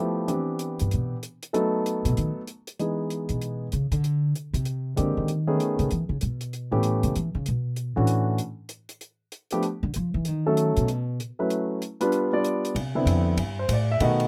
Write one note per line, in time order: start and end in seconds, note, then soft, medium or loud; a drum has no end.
0.00 0.30 F3 medium
0.00 0.30 A3 medium
0.00 0.27 B3 medium
0.00 0.30 E4 medium
0.00 0.26 G4 medium
0.28 1.15 E3 medium
0.28 1.15 B3 medium
0.28 1.15 C4 medium
0.28 1.15 D4 medium
0.28 1.15 G4 medium
0.28 closed hi-hat soft
0.59 closed hi-hat soft
0.79 0.92 G2 medium
0.79 closed hi-hat soft
0.91 1.12 B2 medium
0.91 closed hi-hat soft
1.23 closed hi-hat soft
1.43 closed hi-hat soft
1.53 2.40 F#3 medium
1.53 2.40 A3 medium
1.53 2.40 B3 medium
1.53 2.40 D#4 medium
1.53 2.40 A4 medium
1.53 closed hi-hat soft
1.86 closed hi-hat soft
2.05 2.17 B2 medium
2.05 closed hi-hat soft
2.17 2.29 D#3 medium
2.17 closed hi-hat soft
2.47 closed hi-hat soft
2.67 closed hi-hat soft
2.79 3.66 E3 medium
2.79 3.66 G#3 soft
2.79 3.66 B3 soft
2.79 3.66 D#4 soft
2.79 3.66 G#4 medium
2.79 closed hi-hat soft
3.10 closed hi-hat soft
3.29 3.69 B2 medium
3.29 closed hi-hat soft
3.42 closed hi-hat soft
3.72 3.91 C#3 medium
3.72 closed hi-hat soft
3.91 4.32 D3 loud
3.91 closed hi-hat soft
4.04 closed hi-hat soft
4.35 closed hi-hat soft
4.53 4.94 C3 medium
4.53 closed hi-hat soft
4.65 closed hi-hat soft
4.96 5.28 D3 medium
4.96 5.17 D3 medium
4.96 5.28 G#3 medium
4.96 5.28 A#3 medium
4.96 5.28 C4 medium
4.96 5.28 G4 medium
4.96 closed hi-hat soft
5.17 5.57 D#3 medium
5.28 closed hi-hat soft
5.47 5.88 D#3 medium
5.47 5.88 A3 medium
5.47 5.88 B3 medium
5.47 5.88 C#4 medium
5.47 5.88 G#4 medium
5.60 closed hi-hat soft
5.79 5.90 C#3 medium
5.79 closed hi-hat soft
5.91 6.09 E3 medium
5.91 closed hi-hat soft
6.09 6.21 C#3 medium
6.21 6.69 B2 medium
6.21 closed hi-hat soft
6.41 closed hi-hat soft
6.53 closed hi-hat soft
6.71 7.03 A2 medium
6.71 7.12 E3 medium
6.71 7.13 A3 medium
6.71 7.13 B3 medium
6.71 7.13 C#4 medium
6.71 7.13 G4 medium
6.83 closed hi-hat soft
7.03 7.15 C#3 medium
7.03 closed hi-hat soft
7.16 7.34 E3 medium
7.16 closed hi-hat soft
7.35 7.46 C#3 medium
7.46 7.94 B2 medium
7.46 closed hi-hat soft
7.76 closed hi-hat soft
7.96 8.37 A2 medium
7.96 8.37 E3 medium
7.96 8.37 A3 medium
7.96 8.37 C#4 medium
7.96 8.37 D4 medium
7.96 8.37 F#4 medium
8.07 closed hi-hat soft
8.38 closed hi-hat soft
8.69 closed hi-hat medium
8.89 closed hi-hat soft
9.01 closed hi-hat soft
9.32 closed hi-hat soft
9.51 9.63 F3 medium
9.51 9.63 A3 medium
9.51 9.63 B3 medium
9.51 9.63 D4 medium
9.51 9.63 G4 medium
9.51 closed hi-hat soft
9.63 closed hi-hat soft
9.83 9.95 D3 medium
9.94 10.14 F3 medium
9.94 closed hi-hat medium
10.14 10.28 E3 loud
10.25 10.76 D#3 medium
10.25 closed hi-hat soft
10.46 10.87 F#3 medium
10.46 10.87 A3 medium
10.46 10.87 C#4 medium
10.46 10.87 A4 medium
10.46 10.87 E5 medium
10.57 closed hi-hat medium
10.77 11.17 B2 medium
10.77 closed hi-hat soft
10.88 closed hi-hat soft
11.20 closed hi-hat medium
11.39 11.80 F#3 medium
11.39 11.80 A3 medium
11.39 11.80 C#4 medium
11.39 11.80 E4 medium
11.39 11.80 B4 medium
11.50 closed hi-hat soft
11.82 closed hi-hat medium
12.01 12.31 G3 medium
12.01 12.30 B3 medium
12.01 12.31 D4 medium
12.01 12.31 F4 medium
12.01 12.31 B4 medium
12.01 closed hi-hat soft
12.12 closed hi-hat soft
12.33 12.73 G3 medium
12.33 12.73 B3 medium
12.33 12.74 D4 medium
12.33 12.74 F4 medium
12.33 12.74 D5 medium
12.45 closed hi-hat medium
12.65 closed hi-hat soft
12.75 13.05 C3 medium
12.75 ride medium
12.95 13.36 D3 medium
12.95 13.36 B3 medium
12.95 13.36 C4 medium
12.95 13.36 E4 medium
13.05 13.36 F2 medium
13.05 hi-hat pedal medium
13.05 ride medium
13.37 13.68 G2 medium
13.37 ride medium
13.59 13.70 C5 medium
13.68 13.99 A2 medium
13.68 hi-hat pedal medium
13.68 ride medium
13.73 13.90 D5 medium
13.92 14.02 E5 medium
14.00 14.28 B2 medium
14.00 14.28 D#3 medium
14.00 14.28 A3 medium
14.00 14.28 B3 medium
14.00 14.28 F#4 medium
14.00 14.28 D#5 medium
14.00 ride medium
14.20 ride soft